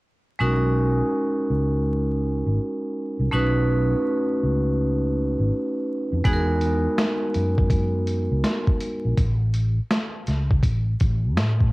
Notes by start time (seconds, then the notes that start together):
0.39 B1 G#3 C#4 D#4 F#4 A#4
1.50 C#2
2.46 G#1
3.19 C2
3.31 B1 A3 C#4 D#4 F#4 B4
4.43 C#2
5.39 G#1
6.12 F2
6.24 E2 G#3 B3 D#4 F#4 G#4, kick, closed hi-hat
6.33 A#4
6.61 closed hi-hat
6.98 snare, closed hi-hat
7.34 F#2, closed hi-hat
7.58 kick
7.70 kick, closed hi-hat
8.07 closed hi-hat
8.31 C#2
8.44 snare, closed hi-hat
8.67 kick
8.81 closed hi-hat
9.05 A#1
9.17 A1, kick, closed hi-hat
9.54 closed hi-hat
9.91 snare, closed hi-hat
10.27 C#2, snare, closed hi-hat
10.51 kick
10.63 A1, kick, closed hi-hat
11.00 A1, kick, closed hi-hat
11.37 A2, snare, closed hi-hat
11.60 kick